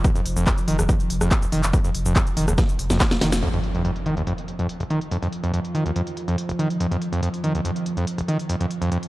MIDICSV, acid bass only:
0, 0, Header, 1, 2, 480
1, 0, Start_track
1, 0, Tempo, 422535
1, 51, Time_signature, 4, 2, 24, 8
1, 10315, End_track
2, 0, Start_track
2, 0, Title_t, "Acid bass"
2, 0, Program_c, 0, 38
2, 51, Note_on_c, 0, 41, 83
2, 120, Note_off_c, 0, 41, 0
2, 177, Note_on_c, 0, 41, 74
2, 240, Note_off_c, 0, 41, 0
2, 416, Note_on_c, 0, 41, 77
2, 511, Note_off_c, 0, 41, 0
2, 530, Note_on_c, 0, 41, 84
2, 600, Note_off_c, 0, 41, 0
2, 771, Note_on_c, 0, 51, 75
2, 874, Note_off_c, 0, 51, 0
2, 897, Note_on_c, 0, 39, 78
2, 960, Note_off_c, 0, 39, 0
2, 1010, Note_on_c, 0, 41, 82
2, 1080, Note_off_c, 0, 41, 0
2, 1377, Note_on_c, 0, 41, 80
2, 1471, Note_off_c, 0, 41, 0
2, 1616, Note_on_c, 0, 29, 78
2, 1654, Note_off_c, 0, 29, 0
2, 1731, Note_on_c, 0, 51, 79
2, 1835, Note_off_c, 0, 51, 0
2, 1971, Note_on_c, 0, 41, 83
2, 2040, Note_off_c, 0, 41, 0
2, 2098, Note_on_c, 0, 41, 77
2, 2160, Note_off_c, 0, 41, 0
2, 2337, Note_on_c, 0, 41, 76
2, 2431, Note_off_c, 0, 41, 0
2, 2451, Note_on_c, 0, 41, 86
2, 2520, Note_off_c, 0, 41, 0
2, 2690, Note_on_c, 0, 51, 73
2, 2794, Note_off_c, 0, 51, 0
2, 2815, Note_on_c, 0, 39, 78
2, 2879, Note_off_c, 0, 39, 0
2, 2930, Note_on_c, 0, 41, 80
2, 3000, Note_off_c, 0, 41, 0
2, 3296, Note_on_c, 0, 41, 78
2, 3391, Note_off_c, 0, 41, 0
2, 3536, Note_on_c, 0, 29, 79
2, 3574, Note_off_c, 0, 29, 0
2, 3651, Note_on_c, 0, 51, 79
2, 3755, Note_off_c, 0, 51, 0
2, 3892, Note_on_c, 0, 41, 82
2, 3961, Note_off_c, 0, 41, 0
2, 4016, Note_on_c, 0, 41, 76
2, 4080, Note_off_c, 0, 41, 0
2, 4256, Note_on_c, 0, 41, 74
2, 4351, Note_off_c, 0, 41, 0
2, 4371, Note_on_c, 0, 41, 81
2, 4440, Note_off_c, 0, 41, 0
2, 4611, Note_on_c, 0, 51, 71
2, 4715, Note_off_c, 0, 51, 0
2, 4737, Note_on_c, 0, 39, 74
2, 4800, Note_off_c, 0, 39, 0
2, 4851, Note_on_c, 0, 41, 84
2, 4920, Note_off_c, 0, 41, 0
2, 5215, Note_on_c, 0, 41, 75
2, 5310, Note_off_c, 0, 41, 0
2, 5457, Note_on_c, 0, 29, 74
2, 5495, Note_off_c, 0, 29, 0
2, 5571, Note_on_c, 0, 51, 76
2, 5675, Note_off_c, 0, 51, 0
2, 5810, Note_on_c, 0, 41, 83
2, 5880, Note_off_c, 0, 41, 0
2, 5936, Note_on_c, 0, 41, 73
2, 5999, Note_off_c, 0, 41, 0
2, 6175, Note_on_c, 0, 41, 78
2, 6270, Note_off_c, 0, 41, 0
2, 6289, Note_on_c, 0, 41, 81
2, 6359, Note_off_c, 0, 41, 0
2, 6529, Note_on_c, 0, 51, 73
2, 6634, Note_off_c, 0, 51, 0
2, 6654, Note_on_c, 0, 39, 76
2, 6718, Note_off_c, 0, 39, 0
2, 6770, Note_on_c, 0, 41, 81
2, 6839, Note_off_c, 0, 41, 0
2, 7134, Note_on_c, 0, 41, 75
2, 7230, Note_off_c, 0, 41, 0
2, 7374, Note_on_c, 0, 29, 75
2, 7413, Note_off_c, 0, 29, 0
2, 7488, Note_on_c, 0, 51, 75
2, 7593, Note_off_c, 0, 51, 0
2, 7730, Note_on_c, 0, 41, 78
2, 7800, Note_off_c, 0, 41, 0
2, 7854, Note_on_c, 0, 41, 78
2, 7918, Note_off_c, 0, 41, 0
2, 8095, Note_on_c, 0, 41, 76
2, 8190, Note_off_c, 0, 41, 0
2, 8208, Note_on_c, 0, 41, 83
2, 8279, Note_off_c, 0, 41, 0
2, 8450, Note_on_c, 0, 51, 69
2, 8554, Note_off_c, 0, 51, 0
2, 8576, Note_on_c, 0, 39, 74
2, 8639, Note_off_c, 0, 39, 0
2, 8690, Note_on_c, 0, 41, 82
2, 8759, Note_off_c, 0, 41, 0
2, 9055, Note_on_c, 0, 41, 76
2, 9150, Note_off_c, 0, 41, 0
2, 9295, Note_on_c, 0, 29, 78
2, 9334, Note_off_c, 0, 29, 0
2, 9410, Note_on_c, 0, 51, 76
2, 9514, Note_off_c, 0, 51, 0
2, 9650, Note_on_c, 0, 41, 82
2, 9720, Note_off_c, 0, 41, 0
2, 9776, Note_on_c, 0, 41, 74
2, 9839, Note_off_c, 0, 41, 0
2, 10015, Note_on_c, 0, 41, 73
2, 10111, Note_off_c, 0, 41, 0
2, 10131, Note_on_c, 0, 41, 81
2, 10200, Note_off_c, 0, 41, 0
2, 10315, End_track
0, 0, End_of_file